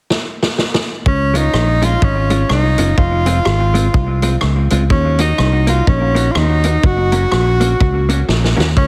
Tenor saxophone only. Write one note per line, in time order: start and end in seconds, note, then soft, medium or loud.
1.08 1.39 C#4 medium
1.37 1.86 D#4 loud
1.84 2.06 F4 loud
2.04 2.51 C#4 medium
2.52 2.96 D#4 loud
2.98 4.39 F4 loud
4.92 5.18 C#4 medium
5.21 5.65 D#4 medium
5.69 5.87 F4 medium
5.89 6.33 C#4 medium
6.31 6.39 F4 medium
6.37 6.87 D#4 loud
6.86 8.29 F#4 loud
8.78 8.87 C#4 loud